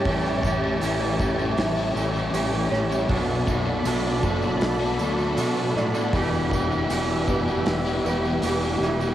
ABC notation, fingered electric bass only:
X:1
M:4/4
L:1/8
Q:1/4=79
K:Amix
V:1 name="Fingered electric bass" clef=bass
A,,,2 A,,,2 A,,, A,,, A,,, A,,, | B,,, B,,, B,,, F,,, B,,, D,, B,, A,, | E,,,2 E,,,2 E,,, E,,, E,,, E,,, |]